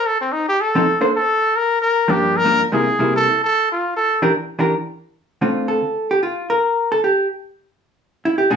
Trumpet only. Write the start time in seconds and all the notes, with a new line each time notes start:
0.06 A4
0.21 C4
0.32 D#4
0.48 G4
0.61 A4
1.16 A4
1.57 A#4
1.82 A#4
2.11 G4
2.37 A#4
2.73 G#4
3.16 A4
3.44 A4
3.72 F4
3.97 A4